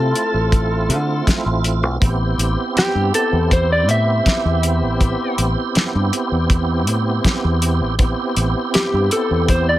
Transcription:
0.00 0.12 C3 medium
0.00 1.97 A3 medium
0.00 1.97 C4 medium
0.00 1.98 E4 medium
0.00 1.99 F4 medium
0.00 1.24 A4 medium
0.16 closed hi-hat medium
0.34 0.91 A1 medium
0.52 kick medium
0.52 closed hi-hat medium
0.89 1.21 D3 medium
0.89 closed hi-hat medium
1.27 kick medium
1.27 snare loud
1.27 closed hi-hat medium
1.46 1.83 A1 medium
1.64 closed hi-hat medium
1.83 1.98 B1 medium
2.00 2.33 A1 loud
2.00 7.94 B3 medium
2.00 7.95 C4 medium
2.00 7.95 E4 medium
2.00 7.96 G4 medium
2.00 kick loud
2.00 closed hi-hat medium
2.38 2.55 A1 medium
2.38 closed hi-hat medium
2.76 3.14 G4 medium
2.76 muted fingered electric bass stroke soft
2.76 snare loud
2.76 closed hi-hat medium
2.95 3.10 G2 medium
3.14 3.51 A4 medium
3.14 closed hi-hat medium
3.33 3.88 E2 medium
3.51 3.71 C5 medium
3.51 kick medium
3.51 closed hi-hat medium
3.72 3.89 D5 medium
3.88 4.20 A2 medium
3.88 5.35 E5 medium
3.88 closed hi-hat medium
4.26 kick medium
4.26 snare loud
4.26 closed hi-hat medium
4.45 4.82 E2 medium
4.63 closed hi-hat medium
4.82 5.14 A1 medium
5.01 kick loud
5.01 closed hi-hat medium
5.38 5.54 A1 medium
5.38 closed hi-hat medium
5.75 muted fingered electric bass stroke soft
5.75 snare loud
5.75 closed hi-hat medium
5.95 6.10 G2 medium
6.13 closed hi-hat medium
6.32 6.87 E2 medium
6.50 kick medium
6.50 closed hi-hat medium
6.87 7.18 A2 medium
6.87 closed hi-hat medium
7.25 kick medium
7.25 snare loud
7.25 closed hi-hat medium
7.44 7.81 E2 medium
7.62 closed hi-hat medium
7.81 8.13 A1 medium
7.98 9.79 B3 medium
7.98 9.79 C4 medium
7.98 9.79 E4 medium
7.98 9.79 G4 medium
7.98 kick medium
7.98 closed hi-hat medium
8.36 8.53 A1 medium
8.36 closed hi-hat medium
8.74 9.11 G4 medium
8.74 muted fingered electric bass stroke soft
8.74 snare loud
8.74 closed hi-hat medium
8.93 9.08 G2 medium
9.11 9.48 A4 medium
9.11 closed hi-hat medium
9.31 9.79 E2 medium
9.48 9.68 C5 medium
9.48 kick medium
9.48 closed hi-hat medium
9.69 9.79 D5 medium

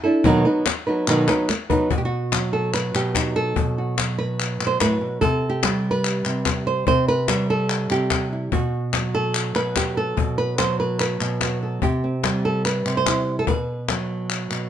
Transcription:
0.04 0.25 D4 soft
0.04 0.24 E4 medium
0.04 0.24 A4 medium
0.24 0.44 B2 medium
0.24 0.45 D#3 medium
0.24 0.45 F#3 medium
0.24 0.45 B3 medium
0.24 0.45 D#4 medium
0.24 0.44 B4 medium
0.24 cajon bass medium
0.45 0.65 F#3 soft
0.45 0.66 B3 soft
0.45 0.66 D#4 medium
0.45 0.65 B4 medium
0.45 cajon slap soft
0.66 muted nylon-string guitar stroke medium
0.66 cajon slap medium
0.66 clap medium
0.87 1.07 F#3 soft
0.87 1.08 B3 soft
0.87 1.07 D#4 soft
0.87 1.07 B4 medium
1.07 1.28 B2 medium
1.07 1.28 D#3 medium
1.07 1.28 F#3 medium
1.07 1.28 B3 medium
1.07 1.28 D#4 medium
1.07 1.27 B4 medium
1.07 clap medium
1.28 1.49 F#3 soft
1.28 1.49 B3 medium
1.28 1.49 D#4 medium
1.28 1.48 B4 medium
1.28 cajon slap medium
1.28 clap medium
1.49 muted nylon-string guitar stroke medium
1.49 cajon slap medium
1.49 clap medium
1.70 1.91 F#3 soft
1.70 1.90 B3 medium
1.70 1.90 D#4 medium
1.70 1.90 B4 medium
1.70 cajon bass medium
1.91 2.93 B2 medium
1.91 1.97 F#4 medium
1.91 cajon bass medium
1.98 2.05 G4 medium
2.05 2.74 F#4 medium
2.12 cajon slap soft
2.32 3.98 F#3 medium
2.32 cajon slap medium
2.32 clap medium
2.53 2.74 A4 medium
2.74 3.36 B4 medium
2.74 clap medium
2.94 3.54 B2 medium
2.94 3.36 G4 medium
2.94 clap medium
3.15 3.54 D#4 soft
3.15 cajon bass medium
3.15 cajon slap medium
3.15 clap medium
3.36 4.18 A4 medium
3.56 4.59 B2 medium
3.56 cajon bass medium
3.78 5.20 F#4 soft
3.98 5.22 F#3 medium
3.98 cajon slap medium
3.98 clap medium
4.18 4.66 B4 medium
4.40 clap medium
4.60 4.81 B2 medium
4.60 clap medium
4.67 4.80 C5 medium
4.81 5.01 A2 medium
4.81 5.21 B4 medium
4.81 cajon slap medium
4.81 clap medium
5.01 5.22 B2 medium
5.21 6.24 C3 medium
5.21 5.90 A4 medium
5.21 cajon bass medium
5.50 6.32 G4 medium
5.63 6.85 G3 medium
5.63 cajon slap medium
5.63 clap medium
5.84 cajon slap soft
5.91 6.66 B4 medium
6.05 clap medium
6.25 6.85 C3 medium
6.25 clap medium
6.46 cajon bass medium
6.46 cajon slap medium
6.46 clap medium
6.67 6.86 C5 medium
6.87 7.89 C3 medium
6.87 7.08 C5 loud
6.87 cajon bass medium
7.08 7.49 B4 medium
7.28 8.50 G3 medium
7.28 cajon slap medium
7.28 clap medium
7.50 8.32 A4 medium
7.70 clap medium
7.90 8.50 C3 medium
7.90 8.32 G4 medium
7.90 cajon slap soft
7.90 clap medium
8.11 cajon bass medium
8.11 cajon slap medium
8.11 clap medium
8.32 8.50 E4 soft
8.52 9.54 B2 medium
8.52 9.56 F#4 medium
8.52 cajon bass medium
8.73 cajon slap soft
8.93 10.57 F#3 medium
8.93 cajon slap medium
8.93 clap medium
9.14 9.55 A4 medium
9.14 cajon slap soft
9.35 clap medium
9.55 10.15 B2 medium
9.55 9.97 B4 medium
9.55 clap medium
9.76 9.97 G4 medium
9.76 cajon bass medium
9.76 cajon slap medium
9.76 clap medium
9.97 10.38 A4 medium
10.17 11.19 B2 medium
10.17 cajon bass medium
10.38 10.58 B4 medium
10.58 11.82 F#3 medium
10.58 10.79 C5 medium
10.58 cajon slap medium
10.58 clap medium
10.80 10.99 B4 medium
11.00 11.62 B4 medium
11.00 clap medium
11.20 11.80 B2 medium
11.20 clap medium
11.41 11.80 F#4 soft
11.41 cajon slap medium
11.41 clap medium
11.62 11.80 A4 soft
11.82 12.84 C3 medium
11.82 12.65 G4 medium
11.82 cajon bass medium
12.03 13.45 C4 soft
12.03 cajon slap soft
12.24 13.45 G3 medium
12.24 cajon slap medium
12.24 clap medium
12.44 12.65 A4 medium
12.44 cajon slap soft
12.65 12.96 B4 medium
12.65 clap medium
12.86 13.45 C3 medium
12.86 cajon slap soft
12.86 clap medium
12.97 13.38 C5 medium
13.06 13.46 E4 soft
13.06 cajon slap medium
13.06 clap medium
13.39 13.48 A4 medium
13.47 14.49 B2 medium
13.47 14.69 B4 medium
13.47 cajon bass medium
13.88 14.69 F#3 medium
13.88 cajon slap medium
13.88 clap medium
14.30 clap medium
14.51 14.69 B2 medium
14.51 clap medium

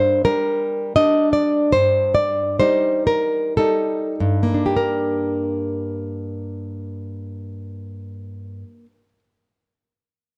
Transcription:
0.00 0.23 G2 medium
0.00 0.23 C5 medium
0.25 0.95 G3 soft
0.25 0.96 D4 soft
0.25 0.94 A#4 medium
0.96 1.71 G3 soft
0.96 1.71 D4 soft
0.96 1.33 D#5 medium
1.33 1.72 D5 medium
1.72 2.57 G2 medium
1.72 2.13 C5 medium
2.15 2.57 D5 medium
2.60 3.57 G3 soft
2.60 3.58 D#4 soft
2.60 3.05 C5 medium
3.07 3.57 A#4 medium
3.57 4.54 G3 soft
3.57 4.74 D#4 soft
3.57 4.15 A4 medium
4.20 8.63 G2 soft
4.43 8.85 A#3 soft
4.54 8.97 D4 soft
4.66 9.08 G4 soft
4.77 9.19 A#4 soft

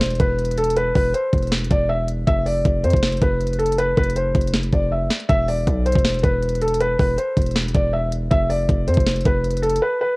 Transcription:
0.00 0.19 E1 loud
0.00 0.18 C5 medium
0.00 snare loud
0.00 closed hi-hat medium
0.06 closed hi-hat medium
0.10 closed hi-hat medium
0.15 closed hi-hat soft
0.20 0.92 E1 loud
0.20 0.55 B4 medium
0.20 kick loud
0.20 closed hi-hat medium
0.39 closed hi-hat soft
0.45 closed hi-hat medium
0.51 closed hi-hat medium
0.58 0.74 A4 medium
0.58 closed hi-hat medium
0.64 closed hi-hat medium
0.70 closed hi-hat medium
0.76 0.93 B4 medium
0.76 closed hi-hat medium
0.95 1.13 E1 loud
0.95 1.12 B4 medium
0.95 kick medium
0.95 open hi-hat medium
1.14 1.50 C5 medium
1.14 closed hi-hat medium
1.33 1.69 E1 loud
1.33 kick medium
1.33 closed hi-hat medium
1.38 closed hi-hat medium
1.43 closed hi-hat medium
1.47 closed hi-hat soft
1.52 snare loud
1.52 closed hi-hat soft
1.58 closed hi-hat medium
1.64 closed hi-hat medium
1.71 2.25 E1 loud
1.71 1.87 D5 medium
1.71 kick loud
1.71 closed hi-hat medium
1.89 2.06 E5 medium
2.08 closed hi-hat medium
2.27 2.64 F1 loud
2.27 2.44 E5 loud
2.27 kick loud
2.27 closed hi-hat medium
2.46 2.82 D5 medium
2.46 open hi-hat medium
2.65 2.85 F1 loud
2.65 kick loud
2.65 closed hi-hat medium
2.84 2.93 F2 loud
2.84 3.20 C5 medium
2.84 closed hi-hat medium
2.90 3.21 F1 loud
2.90 kick loud
2.90 closed hi-hat medium
2.97 closed hi-hat medium
3.03 snare loud
3.03 closed hi-hat medium
3.08 closed hi-hat medium
3.12 closed hi-hat medium
3.17 closed hi-hat soft
3.22 3.94 F1 loud
3.22 3.58 B4 medium
3.22 kick loud
3.22 closed hi-hat medium
3.41 closed hi-hat soft
3.47 closed hi-hat medium
3.53 closed hi-hat medium
3.59 3.76 A4 medium
3.59 closed hi-hat medium
3.66 closed hi-hat medium
3.72 closed hi-hat medium
3.78 3.95 B4 loud
3.78 closed hi-hat medium
3.97 4.33 F1 loud
3.97 4.14 B4 loud
3.97 kick medium
3.97 closed hi-hat soft
3.97 open hi-hat medium
4.03 closed hi-hat medium
4.10 closed hi-hat medium
4.16 4.52 C5 medium
4.16 closed hi-hat medium
4.35 4.71 F1 loud
4.35 kick medium
4.35 closed hi-hat medium
4.41 closed hi-hat medium
4.47 closed hi-hat medium
4.54 snare loud
4.54 closed hi-hat medium
4.63 closed hi-hat medium
4.73 5.09 F1 loud
4.73 4.90 D5 medium
4.73 kick loud
4.73 closed hi-hat medium
4.92 5.08 E5 medium
5.10 snare loud
5.10 closed hi-hat medium
5.20 closed hi-hat soft
5.29 5.66 E1 loud
5.29 5.46 E5 loud
5.29 kick loud
5.29 closed hi-hat medium
5.48 5.84 D5 medium
5.48 open hi-hat medium
5.67 5.94 B1 loud
5.67 kick medium
5.67 closed hi-hat medium
5.86 6.21 C5 medium
5.86 closed hi-hat medium
5.92 6.23 E1 loud
5.92 kick loud
5.92 closed hi-hat medium
5.99 closed hi-hat medium
6.05 snare loud
6.05 closed hi-hat medium
6.10 closed hi-hat medium
6.14 closed hi-hat medium
6.19 closed hi-hat soft
6.23 6.96 E1 loud
6.23 6.59 B4 medium
6.23 kick loud
6.23 closed hi-hat medium
6.43 closed hi-hat soft
6.49 closed hi-hat medium
6.55 closed hi-hat medium
6.61 6.78 A4 medium
6.61 closed hi-hat medium
6.68 closed hi-hat medium
6.74 closed hi-hat medium
6.80 6.97 B4 loud
6.80 closed hi-hat medium
6.99 7.17 E1 loud
6.99 7.16 B4 medium
6.99 kick medium
6.99 open hi-hat medium
7.18 7.53 C5 medium
7.18 closed hi-hat medium
7.37 7.73 E1 loud
7.37 kick medium
7.37 closed hi-hat medium
7.42 closed hi-hat medium
7.46 closed hi-hat medium
7.51 closed hi-hat soft
7.56 snare loud
7.56 closed hi-hat soft
7.62 closed hi-hat medium
7.68 closed hi-hat medium
7.75 8.29 E1 loud
7.75 7.91 D5 medium
7.75 kick loud
7.75 closed hi-hat medium
7.93 8.10 E5 medium
8.12 closed hi-hat medium
8.31 8.67 F1 loud
8.31 8.47 E5 loud
8.31 kick loud
8.31 closed hi-hat medium
8.50 8.85 D5 medium
8.50 open hi-hat medium
8.69 8.89 F1 loud
8.69 kick medium
8.69 closed hi-hat medium
8.88 8.97 F2 loud
8.88 9.23 C5 medium
8.88 closed hi-hat medium
8.94 9.24 F1 loud
8.94 kick loud
8.94 closed hi-hat medium
9.00 closed hi-hat medium
9.07 snare loud
9.07 closed hi-hat medium
9.11 closed hi-hat medium
9.16 closed hi-hat medium
9.21 closed hi-hat soft
9.25 9.80 F1 loud
9.25 9.61 B4 medium
9.25 kick loud
9.25 closed hi-hat medium
9.44 closed hi-hat soft
9.51 closed hi-hat medium
9.57 closed hi-hat medium
9.62 9.79 A4 medium
9.62 closed hi-hat medium
9.70 closed hi-hat medium
9.76 closed hi-hat medium
9.82 9.99 B4 loud
10.01 10.16 B4 loud

